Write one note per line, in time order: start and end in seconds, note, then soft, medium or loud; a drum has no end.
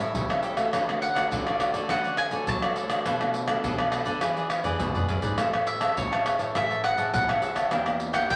0.00 0.12 A2 medium
0.00 0.24 G3 medium
0.00 0.24 C#4 medium
0.00 0.25 E4 medium
0.00 0.29 A4 medium
0.00 0.28 C#5 medium
0.00 0.28 E5 medium
0.15 0.40 C#3 medium
0.15 0.71 E3 medium
0.15 pandeiro medium
0.15 shaker medium
0.15 surdo loud
0.29 0.55 G3 medium
0.29 0.55 C#4 medium
0.29 0.55 E4 medium
0.29 0.42 A4 medium
0.29 0.43 C#5 medium
0.29 0.43 E5 medium
0.29 pandeiro soft
0.29 tamborim medium
0.29 shaker soft
0.43 0.57 G4 soft
0.43 0.57 A4 medium
0.43 0.56 C#5 medium
0.43 0.55 E5 medium
0.43 pandeiro medium
0.43 shaker medium
0.57 0.83 A3 medium
0.57 0.83 C#4 medium
0.57 0.83 F#4 medium
0.57 0.72 A4 medium
0.57 0.72 C#5 medium
0.57 0.71 E5 medium
0.57 pandeiro medium
0.57 tamborim medium
0.57 shaker medium
0.72 1.23 D3 loud
0.72 1.29 D3 medium
0.72 1.00 F#4 soft
0.72 1.01 A4 soft
0.72 1.01 C#5 medium
0.72 1.01 D5 medium
0.72 pandeiro medium
0.72 tamborim medium
0.72 shaker medium
0.72 surdo medium
0.89 1.13 A3 medium
0.89 1.13 C#4 medium
0.89 1.13 F#4 medium
0.89 pandeiro soft
0.89 tamborim medium
0.89 shaker soft
1.01 1.30 F#5 medium
1.01 muted cavaquinho stroke soft
1.01 pandeiro medium
1.15 1.55 A3 medium
1.15 1.56 C#4 medium
1.15 1.56 F#4 medium
1.15 1.30 A4 medium
1.15 1.30 C#5 medium
1.15 1.29 D5 medium
1.15 pandeiro medium
1.15 tamborim medium
1.15 shaker medium
1.31 1.86 A2 medium
1.31 1.69 D3 medium
1.31 1.44 F#4 soft
1.31 1.45 A4 soft
1.31 1.45 C#5 soft
1.31 1.86 D5 medium
1.31 1.45 D5 medium
1.31 pandeiro medium
1.31 shaker medium
1.31 surdo loud
1.46 1.73 A4 medium
1.46 1.73 C#5 medium
1.46 1.72 D5 medium
1.46 pandeiro soft
1.46 tamborim medium
1.46 shaker soft
1.59 1.84 A3 medium
1.59 1.85 C#4 medium
1.59 1.85 F#4 medium
1.59 pandeiro medium
1.59 tamborim medium
1.59 shaker medium
1.73 1.87 D3 loud
1.73 1.88 A4 medium
1.73 1.88 C#5 medium
1.73 1.88 D5 medium
1.73 pandeiro medium
1.73 shaker medium
1.89 2.27 D3 loud
1.89 2.45 D3 medium
1.89 2.17 A3 medium
1.89 2.17 C#4 medium
1.89 2.03 F#4 soft
1.89 2.18 F#4 medium
1.89 2.03 A4 medium
1.89 2.03 C#5 medium
1.89 2.03 D5 medium
1.89 2.18 F#5 medium
1.89 pandeiro medium
1.89 tamborim medium
1.89 shaker medium
1.89 surdo medium
2.04 2.17 A4 medium
2.04 2.17 C#5 medium
2.04 2.18 D5 medium
2.04 pandeiro soft
2.04 shaker soft
2.17 2.47 G#5 medium
2.17 muted cavaquinho stroke soft
2.17 pandeiro medium
2.17 tamborim medium
2.17 shaker medium
2.31 2.45 D3 medium
2.31 2.57 A3 medium
2.31 2.57 C#4 medium
2.31 2.57 F#4 medium
2.31 2.61 A4 medium
2.31 2.61 C#5 medium
2.31 2.60 D5 medium
2.31 pandeiro medium
2.31 shaker medium
2.47 3.03 A2 medium
2.47 2.73 F#3 medium
2.47 3.02 A5 medium
2.47 pandeiro medium
2.47 shaker medium
2.47 surdo loud
2.62 2.87 A3 medium
2.62 2.87 C#4 medium
2.62 2.87 F#4 medium
2.62 2.75 A4 medium
2.62 2.75 C#5 medium
2.62 2.76 D5 medium
2.62 pandeiro soft
2.62 tamborim medium
2.62 shaker soft
2.75 2.90 F#4 medium
2.75 2.89 A4 medium
2.75 2.89 C#5 medium
2.75 2.88 D5 medium
2.75 pandeiro medium
2.75 shaker medium
2.89 3.15 A3 medium
2.89 3.15 D4 medium
2.89 3.16 F#4 medium
2.89 3.04 A4 medium
2.89 3.04 C#5 medium
2.89 3.04 D5 medium
2.89 pandeiro medium
2.89 tamborim medium
2.89 shaker medium
3.05 3.61 B2 medium
3.05 3.56 B2 medium
3.05 3.33 D4 medium
3.05 3.33 A4 medium
3.05 3.33 B4 medium
3.05 3.34 D5 medium
3.05 pandeiro medium
3.05 tamborim medium
3.05 shaker medium
3.05 surdo medium
3.21 3.45 A3 medium
3.21 3.46 D4 medium
3.21 3.46 F#4 medium
3.21 pandeiro soft
3.21 tamborim medium
3.21 shaker soft
3.34 muted cavaquinho stroke soft
3.34 pandeiro medium
3.34 shaker medium
3.48 3.88 A3 medium
3.48 3.88 D4 medium
3.48 3.89 F#4 medium
3.48 3.63 A4 medium
3.48 3.62 B4 medium
3.48 3.62 D5 medium
3.48 pandeiro medium
3.48 tamborim medium
3.48 shaker medium
3.63 4.20 F#2 medium
3.63 4.01 B2 medium
3.63 3.77 D4 soft
3.63 3.77 A4 soft
3.63 3.78 B4 medium
3.63 3.77 D5 medium
3.63 pandeiro medium
3.63 shaker medium
3.63 surdo loud
3.78 4.06 A4 medium
3.78 4.05 B4 medium
3.78 4.04 D5 medium
3.78 pandeiro soft
3.78 tamborim medium
3.78 shaker soft
3.92 4.10 A3 medium
3.92 4.10 D4 medium
3.92 4.10 F#4 medium
3.92 pandeiro medium
3.92 tamborim medium
4.05 4.20 D3 loud
4.05 4.21 A4 medium
4.05 4.20 B4 medium
4.05 4.20 D5 medium
4.05 pandeiro medium
4.05 shaker medium
4.21 4.60 E3 loud
4.21 4.78 E3 medium
4.21 4.50 B3 medium
4.21 4.50 D4 medium
4.21 4.35 E4 soft
4.21 4.36 G#4 medium
4.21 4.50 G#4 medium
4.21 4.36 B4 medium
4.21 4.35 D5 medium
4.21 pandeiro medium
4.21 tamborim medium
4.21 shaker medium
4.21 surdo medium
4.37 4.49 G#4 medium
4.37 4.49 B4 medium
4.37 4.49 D5 medium
4.37 pandeiro soft
4.37 shaker soft
4.50 muted cavaquinho stroke soft
4.50 pandeiro medium
4.50 tamborim medium
4.64 4.77 E3 medium
4.64 4.90 B3 medium
4.64 4.90 D4 medium
4.64 4.94 G#4 medium
4.64 4.90 G#4 medium
4.64 4.93 B4 medium
4.64 4.93 D5 medium
4.64 surdo medium
4.64 pandeiro medium
4.64 shaker medium
4.80 5.05 B2 medium
4.80 5.36 B2 medium
4.80 pandeiro medium
4.80 shaker medium
4.80 surdo loud
4.95 5.20 B3 medium
4.95 5.20 D4 medium
4.95 5.08 G#4 medium
4.95 5.20 G#4 medium
4.95 5.08 B4 medium
4.95 5.08 D5 medium
4.95 surdo medium
4.95 pandeiro soft
4.95 shaker soft
5.08 5.22 F#2 medium
5.08 5.23 E4 medium
5.08 5.23 G#4 medium
5.08 5.22 B4 medium
5.08 5.21 D5 medium
5.08 pandeiro medium
5.08 surdo medium
5.22 5.37 G#2 medium
5.22 5.48 C#4 medium
5.22 5.48 E4 medium
5.22 5.48 G#4 medium
5.22 5.37 G#4 medium
5.22 5.37 B4 medium
5.22 5.37 D5 medium
5.22 pandeiro medium
5.22 shaker medium
5.22 surdo medium
5.38 5.88 A2 loud
5.38 5.94 A3 medium
5.38 5.66 G#4 soft
5.38 5.66 C#5 medium
5.38 5.67 E5 medium
5.38 5.67 A5 medium
5.38 pandeiro medium
5.38 tamborim medium
5.38 shaker medium
5.38 surdo medium
5.53 pandeiro soft
5.53 tamborim medium
5.53 shaker soft
5.67 5.96 E5 medium
5.67 muted cavaquinho stroke soft
5.67 pandeiro medium
5.67 shaker medium
5.80 6.20 C#4 medium
5.80 6.21 E4 medium
5.80 6.21 G#4 medium
5.80 5.96 C#5 medium
5.80 5.95 E5 medium
5.80 5.95 A5 medium
5.80 pandeiro medium
5.80 tamborim medium
5.80 shaker medium
5.96 6.34 A2 medium
5.96 6.52 E3 medium
5.96 6.10 G#4 medium
5.96 6.11 C#5 soft
5.96 6.52 C#5 medium
5.96 6.11 E5 medium
5.96 6.11 A5 medium
5.96 pandeiro medium
5.96 shaker medium
5.96 surdo loud
6.12 6.40 C#5 medium
6.12 6.39 E5 medium
6.12 6.38 A5 medium
6.12 pandeiro soft
6.12 tamborim medium
6.12 shaker soft
6.25 6.50 C#4 medium
6.25 6.50 E4 medium
6.25 6.51 G#4 medium
6.25 pandeiro medium
6.25 tamborim medium
6.25 shaker medium
6.39 6.52 A2 loud
6.39 6.54 C#5 medium
6.39 6.54 E5 medium
6.39 6.53 A5 medium
6.39 pandeiro medium
6.39 shaker medium
6.55 6.92 A2 loud
6.55 7.10 A3 medium
6.55 6.94 C#4 medium
6.55 6.94 E4 medium
6.55 6.69 G#4 soft
6.55 6.95 G#4 medium
6.55 6.69 C#5 medium
6.55 6.83 E5 medium
6.55 6.69 E5 medium
6.55 6.69 A5 medium
6.55 pandeiro medium
6.55 tamborim medium
6.55 shaker medium
6.55 surdo medium
6.71 6.83 C#5 medium
6.71 6.84 E5 medium
6.71 6.84 A5 medium
6.71 pandeiro soft
6.71 shaker soft
6.84 7.12 F#5 medium
6.84 muted cavaquinho stroke soft
6.84 pandeiro medium
6.84 tamborim medium
6.97 7.11 A2 medium
6.97 7.37 C#4 medium
6.97 7.37 E4 medium
6.97 7.38 G#4 medium
6.97 7.27 C#5 medium
6.97 7.26 E5 medium
6.97 7.26 A5 medium
6.97 pandeiro medium
6.97 shaker medium
7.13 7.38 A2 medium
7.13 7.69 E3 medium
7.13 7.68 F#5 medium
7.13 pandeiro medium
7.13 shaker medium
7.13 surdo loud
7.28 7.41 C#5 medium
7.28 7.42 E5 medium
7.28 7.42 A5 medium
7.28 pandeiro soft
7.28 tamborim medium
7.28 shaker soft
7.42 7.67 C#4 medium
7.42 7.67 E4 medium
7.42 7.56 G#4 medium
7.42 7.67 G#4 medium
7.42 7.55 C#5 soft
7.42 7.55 E5 medium
7.42 7.54 A5 medium
7.42 pandeiro medium
7.42 shaker medium
7.55 7.70 C#5 medium
7.55 7.70 E5 medium
7.55 7.70 A5 medium
7.55 pandeiro medium
7.55 tamborim medium
7.55 shaker medium
7.71 8.21 E2 medium
7.71 8.27 E3 medium
7.71 7.81 A#3 medium
7.71 7.99 D4 medium
7.71 7.81 D4 medium
7.71 7.81 G4 medium
7.71 7.99 A#4 medium
7.71 7.99 E5 medium
7.71 8.00 G5 medium
7.71 pandeiro medium
7.71 tamborim medium
7.71 shaker medium
7.71 surdo medium
7.86 8.11 A#3 medium
7.86 8.11 D4 medium
7.86 8.11 G4 medium
7.86 pandeiro soft
7.86 tamborim medium
7.86 shaker soft
8.00 muted cavaquinho stroke soft
8.00 pandeiro medium
8.00 shaker medium
8.13 8.36 A#3 medium
8.13 8.36 D4 medium
8.13 8.36 G4 medium
8.13 8.29 A#4 medium
8.13 8.28 E5 medium
8.13 8.29 F#5 medium
8.13 8.28 G5 medium
8.13 pandeiro medium
8.13 tamborim medium
8.13 shaker medium
8.29 8.36 E2 medium
8.29 8.36 E3 medium
8.29 8.36 D4 soft
8.29 8.36 A#4 soft
8.29 8.36 E5 medium
8.29 8.36 G5 loud
8.29 8.36 G5 medium
8.29 pandeiro medium
8.29 shaker medium
8.29 surdo loud